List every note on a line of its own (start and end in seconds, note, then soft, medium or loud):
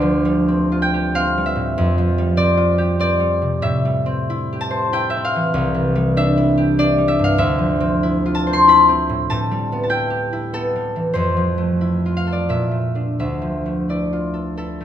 0.00 1.79 D2 medium
0.00 1.97 F3 medium
0.00 0.24 G3 soft
0.00 1.60 D4 soft
0.00 0.93 G4 medium
0.00 1.63 C5 medium
0.00 1.78 D5 medium
0.00 0.59 E5 medium
0.25 1.36 G3 medium
0.48 1.14 C4 medium
0.72 2.56 F4 medium
0.82 4.72 G5 medium
0.94 2.77 G4 medium
1.15 2.36 C4 medium
1.15 3.66 F5 loud
1.38 2.17 G3 medium
1.46 3.61 E5 medium
1.56 1.79 A2 soft
1.78 3.66 F2 medium
1.98 3.66 F3 medium
2.18 3.19 G3 medium
2.37 2.98 C4 medium
2.37 2.99 D5 medium
2.57 3.65 F4 medium
2.78 4.51 G4 medium
2.99 4.05 C4 medium
2.99 4.09 D5 loud
3.20 3.84 G3 medium
3.42 3.65 C3 soft
3.62 5.58 A2 medium
3.62 5.09 E5 medium
3.85 5.94 G3 medium
4.06 5.15 C4 medium
4.30 4.92 E4 medium
4.53 6.56 G4 medium
4.61 5.56 A5 loud
4.71 8.46 C5 medium
4.93 6.36 E4 medium
4.93 7.39 G5 loud
5.10 5.36 E5 medium
5.16 7.79 C4 medium
5.25 6.81 F5 medium
5.36 5.58 E3 soft
5.54 7.39 C2 medium
5.74 7.39 E3 medium
5.96 6.97 G3 medium
6.17 6.78 D4 medium
6.17 7.07 E5 loud
6.37 8.02 E4 medium
6.58 7.40 G4 medium
6.79 9.33 D4 medium
6.79 9.33 D5 loud
6.98 7.40 G3 medium
7.08 7.33 E5 medium
7.19 7.41 G2 medium
7.24 7.49 F5 medium
7.38 9.33 D2 medium
7.38 11.29 E5 loud
7.58 9.32 F3 medium
7.80 8.88 C4 medium
8.03 8.67 E4 medium
8.26 9.33 F4 medium
8.35 9.29 A5 loud
8.47 11.12 C5 medium
8.53 8.79 C6 loud
8.68 9.88 E4 medium
8.68 9.73 B5 loud
8.89 12.52 C4 medium
9.09 9.29 A2 soft
9.30 11.18 A2 medium
9.30 9.82 A5 loud
9.51 10.74 G3 medium
9.72 10.52 B3 medium
9.83 9.95 A5 medium
9.89 10.31 E4 medium
9.89 11.17 G5 medium
10.10 11.17 G4 medium
10.33 11.80 E4 medium
10.53 11.18 B3 medium
10.53 12.26 A4 medium
10.76 11.18 G3 soft
10.96 11.18 E3 soft
11.14 12.52 F2 medium
11.14 12.51 C5 medium
11.37 13.40 F3 soft
11.58 12.70 A3 soft
11.81 12.52 E4 soft
12.06 14.12 F4 soft
12.17 14.85 F5 medium
12.27 14.33 A4 soft
12.32 12.61 D5 medium
12.49 13.21 A#2 medium
12.49 13.18 E5 medium
12.71 12.94 A3 soft
12.95 13.65 A3 soft
12.95 14.85 D4 soft
13.19 14.85 D2 soft
13.19 14.85 E5 medium
13.42 14.85 F3 soft
13.66 14.79 A3 soft
13.89 14.57 E4 soft
13.89 14.85 D5 soft
14.13 14.85 F4 soft
14.34 14.56 A4 soft
14.57 14.85 E4 soft
14.57 14.85 A4 medium
14.81 14.85 A3 soft